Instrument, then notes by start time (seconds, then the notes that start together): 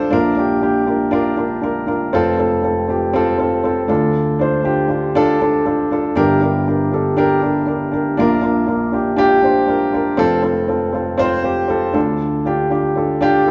upright piano
Already playing: D2 D3 D4 F4 A4 C5 F5 A5
0.11 A#1 A#2 D4 F4 A#4
0.37 D4 F4 G4
0.61 D4 F4 G4
0.86 D4 F4 A#4
1.11 D4 F4 A#4
1.36 D4 F4 A#4
1.62 D4 F4 A#4
1.87 D4 F4 A#4
2.13 F1 F2 C4 F4 A4
2.37 C4 F4 A4
2.63 C4 F4 A4
2.88 C4 F4 G4
3.13 C4 F4 A4
3.38 C4 F4 A4
3.64 C4 F4 A4
3.88 D2 D3 D4 F4 A4
4.39 D4 F4 C5
4.63 D4 F4 G4
4.88 D4 F4 G4
5.15 D4 F4 A4
5.40 D4 F4 A4
5.65 D4 F4 A4
5.91 D4 F4 A4
6.16 G1 G2 D4 G4 A#4
6.41 D4 G4 A#4
6.67 D4 G4 A#4
6.92 D4 G4 A4
7.17 D4 G4 A#4
7.42 D4 G4 A#4
7.66 D4 G4 A#4
7.92 D4 G4 A#4
8.17 A#1 A#2 D4 F4 A#4
8.41 D4 F4 A#4
8.67 D4 F4 A#4
8.92 D4 F4 G4
9.16 D4 F4 G4
9.41 D4 F4 C5
9.67 D4 F4 A#4
9.92 D4 F4 A#4
10.17 F1 F2 C4 F4 A4
10.43 C4 F4 A4
10.68 C4 F4 A4
10.93 C4 F4 A4
11.18 C4 F4 C5
11.43 C4 F4 G4
11.68 C4 F4 A4
11.93 D2 D3 D4 F4 A4
12.45 D4 F4 G4
12.70 D4 F4 G4
12.95 D4 F4 A4
13.21 D4 F4 G4
13.46 D4 F4 A4